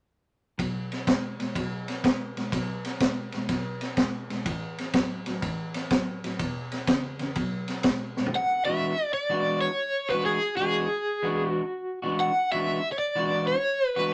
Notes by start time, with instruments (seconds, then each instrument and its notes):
0.58 clean electric guitar B2 F#3, kick, ride
0.92 snare, ride
1.07 clean electric guitar B2 G#3, kick, snare, ride
1.40 clean electric guitar B2 G#3, snare, ride
1.55 clean electric guitar B2 F#3, kick, ride
1.88 snare, ride
2.04 clean electric guitar B2 G#3, kick, snare, ride
2.37 clean electric guitar B2 G#3, snare, ride
2.52 clean electric guitar B2 F#3, kick, snare, ride
2.85 snare, ride
3.00 clean electric guitar B2 G#3, kick, snare, ride
3.32 clean electric guitar B2 G#3, snare, ride
3.49 clean electric guitar B2 F#3, kick, snare, ride
3.81 snare, ride
3.97 clean electric guitar B2 G#3, kick, snare, ride
4.30 clean electric guitar B2 G#3, snare, ride
4.46 clean electric guitar A2 E3, kick, ride
4.78 snare, ride
4.93 clean electric guitar A2 F#3, kick, snare, ride
5.26 clean electric guitar A2 F#3, snare, ride
5.42 clean electric guitar A2 E3, kick, ride
5.74 snare, ride
5.90 clean electric guitar A2 F#3, kick, snare, ride
6.24 clean electric guitar A2 F#3, snare, ride
6.39 clean electric guitar E2 B2, kick, ride
6.72 snare, ride
6.87 clean electric guitar E2 C#3, kick, snare, ride
7.19 clean electric guitar E2 C#3, snare, ride
7.35 clean electric guitar B2 F#3, kick, ride
7.68 snare, ride
7.83 clean electric guitar B2 G#3, kick, snare, ride
8.17 clean electric guitar B2 G#3, snare
8.26 floor tom
8.35 overdriven electric guitar F#5
8.65 clean electric guitar E3 G#3 D4 F#4, overdriven electric guitar E5
9.14 overdriven electric guitar D5
9.30 clean electric guitar E3 G#3 D4 F#4
9.61 overdriven electric guitar C#5
10.10 clean electric guitar E3 G#3 D4 F#4, overdriven electric guitar B4
10.25 overdriven electric guitar G#4
10.57 clean electric guitar E3 G#3 D4 F#4, overdriven electric guitar G#4
11.23 clean electric guitar E3 G#3 D4 F#4
11.52 overdriven electric guitar F#4
12.02 clean electric guitar E3 G#3 D4 F#4
12.20 overdriven electric guitar F#5
12.52 clean electric guitar E3 G#3 D4 F#4, overdriven electric guitar E5
12.92 overdriven electric guitar C#5
12.99 overdriven electric guitar D5
13.15 clean electric guitar E3 G#3 D4 F#4
13.47 overdriven electric guitar C#5
13.96 clean electric guitar E3 G#3 D4 F#4, overdriven electric guitar B4